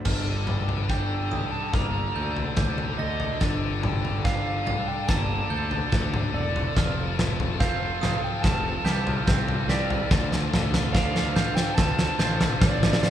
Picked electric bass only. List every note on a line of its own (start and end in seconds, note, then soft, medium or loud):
0.05 1.34 G1 medium
1.74 2.06 G1 medium
2.16 2.48 D2 medium
2.57 2.89 D2 medium
2.99 3.31 D2 medium
3.41 4.69 G1 medium
5.09 5.41 G1 medium
5.50 5.82 D2 medium
5.92 6.25 D2 medium
6.34 6.66 E1 medium
6.77 8.04 F1 medium
8.44 8.76 F1 medium
8.84 9.17 C2 medium
9.27 9.59 C2 medium
9.68 10.00 C2 medium
10.11 11.38 D2 loud
11.78 12.10 D2 loud
12.19 12.51 A1 medium
12.61 12.93 A1 medium
13.03 13.10 A1 medium